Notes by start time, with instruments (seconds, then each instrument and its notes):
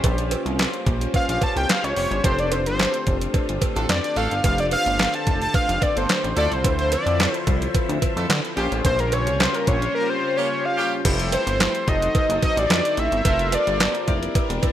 Already playing: string machine C#3 G3 A#3 F4, analog polysynth C#4 F4 G4 C5
0.04 analog synth bass A#1, kick, closed hi-hat, cowbell
0.18 closed hi-hat
0.31 closed hi-hat, cowbell
0.46 analog synth bass C2, closed hi-hat
0.59 snare, clap, closed hi-hat, cowbell
0.74 closed hi-hat
0.86 analog synth bass A#1, kick, closed hi-hat
1.01 closed hi-hat
1.14 analog synth lead F5, kick, closed hi-hat, cowbell
1.29 analog synth bass A#1, analog synth lead F5, closed hi-hat
1.41 analog synth lead A5, kick, closed hi-hat, cowbell
1.56 analog synth bass C2, analog synth lead G5, closed hi-hat
1.69 analog synth lead F5, snare, clap, closed hi-hat, cowbell
1.84 analog synth bass C#2, analog synth lead C#5, closed hi-hat
1.96 analog synth bass F1, analog synth lead C#5, open hi-hat
2.11 analog synth bass G1, closed hi-hat
2.23 analog synth bass F1, string machine D3 A3 C4, analog polysynth D4 G4 A4 C5, analog synth lead C5, kick, closed hi-hat, cowbell
2.39 analog synth lead D5, closed hi-hat
2.52 analog synth lead C5, closed hi-hat, cowbell
2.66 analog synth bass G1, analog synth lead C5, closed hi-hat
2.79 snare, clap, closed hi-hat, cowbell
2.94 closed hi-hat
3.07 analog synth bass F1, kick, closed hi-hat
3.21 closed hi-hat
3.34 kick, closed hi-hat, cowbell
3.49 analog synth bass G1, closed hi-hat
3.61 kick, closed hi-hat, cowbell
3.76 analog synth bass A1, horn section D4 F4 A4, closed hi-hat
3.89 analog synth bass F2, analog synth lead D5, snare, clap, closed hi-hat, cowbell
4.04 analog synth lead D5, closed hi-hat
4.16 analog synth bass A1, horn section D4 F4 A4, analog synth lead F5, closed hi-hat
4.31 analog synth bass G1, closed hi-hat
4.44 analog synth bass F1, analog synth lead F5, kick, closed hi-hat, cowbell
4.58 analog synth lead D5, closed hi-hat
4.71 analog synth lead F5, closed hi-hat, cowbell
4.86 analog synth bass G1, closed hi-hat
4.99 snare, clap, closed hi-hat, cowbell
5.14 analog synth lead A5, closed hi-hat
5.27 analog synth bass F1, kick, closed hi-hat
5.42 analog synth lead A5, closed hi-hat
5.54 analog synth lead F5, kick, closed hi-hat, cowbell
5.69 analog synth bass F1, closed hi-hat
5.82 analog synth lead D5, kick, closed hi-hat, cowbell
5.96 analog synth bass G1, horn section D4 F4 A4, analog synth lead C5, closed hi-hat
6.09 snare, clap, closed hi-hat, cowbell
6.24 analog synth bass A1, closed hi-hat
6.36 analog synth bass D2, string machine F3 E5, horn section A3 F4 A4, analog polysynth E4 F4 A4 C5, analog synth lead D5, closed hi-hat
6.51 analog synth bass C2, analog synth lead C5, closed hi-hat
6.64 analog synth bass D2, kick, closed hi-hat, cowbell
6.79 analog synth lead C5, closed hi-hat
6.92 analog synth lead D5, closed hi-hat, cowbell
7.06 analog synth bass F2, closed hi-hat
7.20 snare, clap, closed hi-hat, cowbell
7.34 closed hi-hat
7.47 analog synth bass C2, kick, closed hi-hat
7.62 closed hi-hat
7.75 kick, closed hi-hat, cowbell
7.89 analog synth bass D2, closed hi-hat
8.02 kick, closed hi-hat, cowbell
8.16 analog synth bass F2, horn section A3 F4 A4, closed hi-hat
8.30 analog synth bass D3, snare, clap, closed hi-hat, cowbell
8.45 closed hi-hat
8.56 analog synth bass A#1, string machine C#3 G3 A#3 F4, horn section A#3 C#4 G4, analog polysynth C#4 F4 G4 C5, closed hi-hat
8.72 analog synth bass A1, closed hi-hat
8.85 analog synth bass A#1, analog synth lead C5, kick, closed hi-hat, cowbell
8.99 analog synth lead A#4, closed hi-hat
9.12 analog synth lead C#5, closed hi-hat, cowbell
9.27 analog synth bass C2, closed hi-hat
9.40 analog synth lead C5, snare, clap, closed hi-hat, cowbell
9.54 analog synth lead A#4, closed hi-hat
9.67 analog synth bass A#1, analog synth lead C#5, kick, closed hi-hat
9.82 closed hi-hat
9.95 analog synth lead A#4
10.10 analog synth lead C5
10.37 horn section A#3 C#4 G4, analog synth lead C#5
10.65 analog synth lead F5
10.77 horn section A#3 C#4 G4
11.05 analog synth bass F1, string machine F3 G3 A3 E4, analog polysynth E4 G4 A4 C5, kick, closed hi-hat, crash, cowbell
11.19 closed hi-hat
11.32 analog synth lead C5, closed hi-hat, cowbell
11.47 analog synth bass G1, closed hi-hat
11.60 snare, clap, closed hi-hat, cowbell
11.75 closed hi-hat
11.87 analog synth bass F1, string machine D3 F#3 C4 D#4, analog polysynth D#4 F#4 A4 C5, analog synth lead D#5, kick, closed hi-hat
12.02 closed hi-hat
12.15 kick, closed hi-hat, cowbell
12.29 analog synth bass F#1, closed hi-hat
12.43 analog synth lead D#5, kick, closed hi-hat, cowbell
12.57 analog synth bass A1, analog synth lead D5, closed hi-hat
12.70 analog synth bass F2, snare, clap, closed hi-hat, cowbell
12.85 closed hi-hat
12.97 analog synth bass A1, analog synth lead E5, closed hi-hat
13.12 analog synth bass G1, closed hi-hat
13.25 analog synth bass F1, string machine C3 G3 A#3 F4, analog polysynth F4 A4 A#4 C5, kick, closed hi-hat, cowbell
13.39 closed hi-hat
13.52 analog synth lead D5, closed hi-hat, cowbell
13.67 analog synth bass G1, closed hi-hat
13.80 snare, clap, closed hi-hat, cowbell
13.95 closed hi-hat
14.07 analog synth bass F1, string machine D3 E3 A#3 C4, analog polysynth E4 G4 A#4 D5, kick, closed hi-hat
14.23 closed hi-hat
14.35 kick, closed hi-hat, cowbell
14.50 analog synth bass E1, closed hi-hat
14.63 kick, closed hi-hat, cowbell